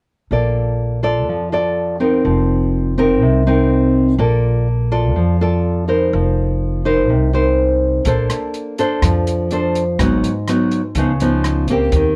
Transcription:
0.31 upright bass A#1, nylon-string guitar A#3 F4 A4 D5
1.03 nylon-string guitar F4 A4 D5
1.28 upright bass F2, nylon-string guitar F3
1.52 nylon-string guitar F4 A4 D5
2.00 nylon-string guitar C4 D#4 A#4
2.25 upright bass F1, nylon-string guitar F3
2.98 nylon-string guitar C4 D#4 A#4
3.21 upright bass C2, nylon-string guitar C3
3.47 nylon-string guitar C4 D#4 A#4
4.18 upright bass A#1, nylon-string guitar A#3 F4 A4 D5
4.92 nylon-string guitar F4 A4 D5
5.16 upright bass F2, nylon-string guitar F3
5.41 nylon-string guitar F4 A4 D5
5.88 nylon-string guitar D#4 A#4 C5
6.13 upright bass F1, nylon-string guitar F3
6.85 nylon-string guitar D#4 A#4 C5
7.09 upright bass C2, nylon-string guitar C3
7.33 nylon-string guitar D#4 A#4 C5
8.05 upright bass A#1, nylon-string guitar A#3 D4 A4 C5, kick, closed hi-hat
8.30 cross-stick, closed hi-hat
8.54 closed hi-hat
8.78 nylon-string guitar D4 A4 C5, closed hi-hat
9.02 upright bass F2, nylon-string guitar F3, kick, cross-stick, closed hi-hat
9.27 closed hi-hat
9.51 nylon-string guitar D4 A4 C5, closed hi-hat
9.76 closed hi-hat
9.99 upright bass G#1, nylon-string guitar G#2 F#3 B3 D#4, kick, cross-stick, closed hi-hat
10.24 closed hi-hat
10.48 nylon-string guitar F#3 B3 D#4, cross-stick, closed hi-hat
10.72 closed hi-hat
10.95 upright bass C#2, nylon-string guitar C#3 F3 B3 D#4, kick, closed hi-hat
11.20 nylon-string guitar F3 B3 D#4, closed hi-hat
11.44 cross-stick, closed hi-hat
11.68 nylon-string guitar A#3 C4 G4, kick, closed hi-hat
11.92 upright bass D#2, nylon-string guitar D#3, kick, closed hi-hat

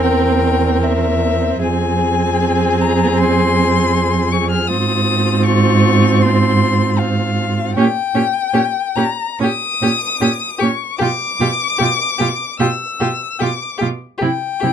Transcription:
Already playing: cello E2, viola C4, violin A#4
0.03 violin G5
0.83 violin E5
1.61 cello F2, viola C4, violin G#4 G#5
2.80 violin A#5
3.18 violin C6
4.32 violin C#6
4.51 violin F6
4.67 cello G#2, viola C4, violin F4 D#6
5.45 violin C#6
6.22 violin C6
6.99 violin F5
7.75 cello A#2, viola C#4, violin G4 G5
8.14 cello A#2, viola C#4, violin G4
8.53 cello A#2, viola C#4, violin G4
8.95 cello A#2, viola C#4, violin G4 A#5
9.39 cello A#2, viola C#4, violin G4 D#6
9.81 cello A#2, viola C#4, violin G4
10.21 cello A#2, viola C#4, violin G4
10.58 cello A#2, violin G4 C#6
10.62 viola C#4
10.98 cello B2, viola F4, violin G4 D6
11.40 cello B2, viola F4, violin G4
11.78 cello B2, viola F4, violin G4
12.18 cello B2, viola F4, violin G4
12.60 cello B2, viola F4, violin G4 E6
13.00 cello B2, viola F4, violin G4
13.39 cello B2, viola F4, violin G4 D6
13.78 viola F4, violin G4
13.82 cello B2
14.18 cello C3, viola E4, violin G4 G5
14.60 cello C3, viola E4, violin G4

